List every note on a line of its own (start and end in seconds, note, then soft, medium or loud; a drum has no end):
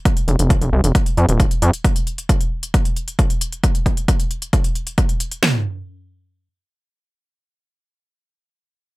0.05 kick loud
0.05 closed hi-hat medium
0.17 closed hi-hat soft
0.28 0.36 F1 medium
0.28 closed hi-hat soft
0.39 0.56 F1 medium
0.39 closed hi-hat medium
0.50 kick loud
0.50 closed hi-hat medium
0.61 0.70 F1 loud
0.61 closed hi-hat soft
0.73 0.81 C2 loud
0.84 0.92 F1 medium
0.84 closed hi-hat soft
0.95 kick loud
0.95 closed hi-hat medium
1.06 closed hi-hat soft
1.17 1.26 F2 loud
1.17 closed hi-hat soft
1.29 1.46 D#1 medium
1.29 closed hi-hat medium
1.40 kick loud
1.40 closed hi-hat medium
1.51 closed hi-hat soft
1.62 1.71 F2 medium
1.62 closed hi-hat medium
1.74 closed hi-hat soft
1.85 kick loud
1.85 closed hi-hat medium
1.96 closed hi-hat soft
2.07 closed hi-hat soft
2.18 closed hi-hat medium
2.29 kick loud
2.29 closed hi-hat medium
2.41 closed hi-hat soft
2.63 closed hi-hat medium
2.74 kick loud
2.74 closed hi-hat medium
2.85 closed hi-hat soft
2.96 closed hi-hat soft
3.08 closed hi-hat medium
3.19 kick loud
3.19 closed hi-hat medium
3.30 closed hi-hat medium
3.41 closed hi-hat medium
3.53 closed hi-hat soft
3.64 kick loud
3.64 closed hi-hat medium
3.75 closed hi-hat medium
3.86 kick medium
3.86 closed hi-hat soft
3.97 closed hi-hat medium
4.08 kick loud
4.08 closed hi-hat medium
4.20 closed hi-hat soft
4.31 closed hi-hat soft
4.42 closed hi-hat soft
4.53 kick loud
4.53 closed hi-hat medium
4.64 closed hi-hat medium
4.75 closed hi-hat soft
4.87 closed hi-hat medium
4.98 kick loud
4.98 closed hi-hat medium
5.09 closed hi-hat soft
5.20 closed hi-hat medium
5.32 closed hi-hat medium
5.43 snare loud
5.43 floor tom loud